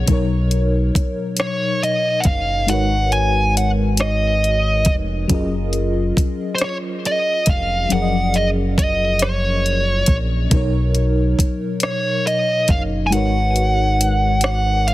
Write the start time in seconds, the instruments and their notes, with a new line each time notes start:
0.06 analog synth bass B1, fm electric piano B2 F#3 D#4, kick, closed hi-hat
0.11 fm electric piano A#4 C#5
0.51 closed hi-hat
0.95 analog synth bass F#1, kick, closed hi-hat
1.37 cross-stick, closed hi-hat
1.41 lead electric guitar C#5
1.83 lead electric guitar D#5, closed hi-hat
2.20 lead electric guitar F#5, closed hi-hat
2.25 analog synth bass F#1, lead electric guitar F5, kick
2.67 analog synth bass G#1, fm electric piano G#3 D#4 F#4 A#4, lead electric guitar F#5, closed hi-hat
2.72 fm electric piano B4 C#5
3.12 lead electric guitar G#5, closed hi-hat
3.57 lead electric guitar F#5, closed hi-hat
3.97 lead electric guitar D#5, cross-stick, closed hi-hat
4.44 closed hi-hat
4.85 analog synth bass F1, kick, closed hi-hat
5.28 analog synth bass F#1, fm electric piano F#3 C#4 F4 G#4, kick, closed hi-hat
5.33 fm electric piano A#4 D#5
5.73 closed hi-hat
6.17 analog synth bass F1, kick, closed hi-hat
6.55 lead electric guitar C5, closed hi-hat
6.61 lead electric guitar C#5, cross-stick
7.05 lead electric guitar D#5, closed hi-hat
7.46 analog synth bass F1, lead electric guitar F5, kick, closed hi-hat
7.89 analog synth bass F#1, fm electric piano F3 F#3 C#4 G#4, lead electric guitar F#5, closed hi-hat
7.94 fm electric piano A#4 D5
8.02 fm electric piano D#5
8.34 lead electric guitar D#5, closed hi-hat
8.78 lead electric guitar D#5, kick, closed hi-hat
9.19 lead electric guitar C#5, cross-stick, closed hi-hat
9.66 closed hi-hat
10.06 analog synth bass A#1, kick, closed hi-hat
10.50 analog synth bass B1, fm electric piano B2 F#3 D#4, kick, closed hi-hat
10.54 fm electric piano A#4 C#5
10.95 closed hi-hat
11.39 analog synth bass F#1, kick, closed hi-hat
11.80 lead electric guitar C#5, cross-stick, closed hi-hat
12.27 lead electric guitar D#5, closed hi-hat
12.68 analog synth bass F#1, lead electric guitar F5, kick, closed hi-hat
13.07 fm electric piano G#3, lead electric guitar G#5
13.11 analog synth bass G#1, fm electric piano D#4 F#4 A#4 B4, lead electric guitar F#5, closed hi-hat
13.17 fm electric piano C#5
13.56 closed hi-hat
14.01 closed hi-hat
14.41 lead electric guitar F#5, cross-stick, closed hi-hat
14.88 lead electric guitar F5, closed hi-hat